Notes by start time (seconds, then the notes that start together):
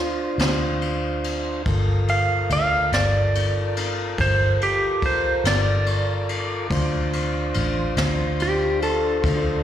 Already playing: D4 F4 C5
0.38 D2, snare, ride
0.82 ride
1.24 ride
1.66 G1 F4 A4 A#4, kick, ride
2.08 F5, ride
2.50 D2 F5, ride
2.92 G1 D5, snare, ride
3.35 ride
3.77 ride
4.18 G1 C5, kick, snare, ride
4.61 G4, ride
5.02 C5, kick, ride
5.44 G1 D5, snare, ride
5.86 ride
6.29 ride
6.70 D2 D4 F4 C5, kick, ride
7.13 ride
7.54 A1, ride
7.97 D2, snare, ride
8.40 G4, ride
8.82 A4, ride
9.24 D2, kick, snare, ride